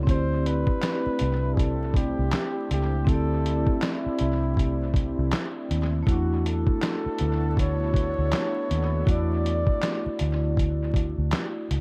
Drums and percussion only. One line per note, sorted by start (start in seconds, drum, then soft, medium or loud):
0.07 kick loud
0.07 closed hi-hat medium
0.46 closed hi-hat medium
0.67 kick medium
0.82 snare loud
0.82 clap medium
0.82 closed hi-hat medium
1.19 closed hi-hat medium
1.57 kick medium
1.57 closed hi-hat medium
1.94 kick medium
1.94 closed hi-hat medium
2.31 snare loud
2.31 clap medium
2.31 closed hi-hat medium
2.71 closed hi-hat medium
3.07 kick loud
3.07 closed hi-hat medium
3.46 closed hi-hat medium
3.67 kick medium
3.82 snare loud
3.82 clap loud
3.82 closed hi-hat medium
4.19 closed hi-hat medium
4.57 kick medium
4.57 closed hi-hat medium
4.94 kick medium
4.94 closed hi-hat medium
5.31 snare loud
5.31 clap medium
5.31 closed hi-hat medium
5.71 closed hi-hat medium
6.07 kick loud
6.07 closed hi-hat medium
6.46 closed hi-hat medium
6.67 kick medium
6.82 snare loud
6.82 clap medium
6.82 closed hi-hat medium
7.18 closed hi-hat medium
7.57 kick medium
7.57 closed hi-hat medium
7.94 kick medium
7.94 closed hi-hat medium
8.32 snare loud
8.32 clap medium
8.32 closed hi-hat medium
8.71 closed hi-hat medium
9.07 kick loud
9.07 closed hi-hat medium
9.46 closed hi-hat medium
9.67 kick medium
9.82 snare loud
9.82 clap medium
9.82 closed hi-hat medium
10.19 closed hi-hat medium
10.57 kick medium
10.57 closed hi-hat medium
10.94 kick medium
10.94 closed hi-hat medium
11.31 snare loud
11.31 clap medium
11.31 closed hi-hat medium
11.71 closed hi-hat medium